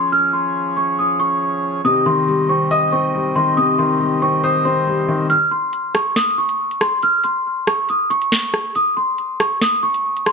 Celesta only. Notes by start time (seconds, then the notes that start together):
0.12 F6
0.33 C6
0.77 C#6
0.99 D#6
1.20 C#6
1.85 D#6
2.06 C6
2.49 C#6
2.71 D#6
2.92 C#6
3.36 C6
3.57 D#6
3.79 C6
4.22 C#6
4.44 D#6
4.65 C6
5.30 F6
5.51 C6
5.95 C#6
6.16 D#6
6.38 C#6
6.81 C6
7.03 F6
7.24 C6
7.67 C#6
7.90 D#6
8.10 C#6
8.76 D#6
8.97 C6
9.40 C#6
9.62 D#6
9.83 C#6
10.26 C6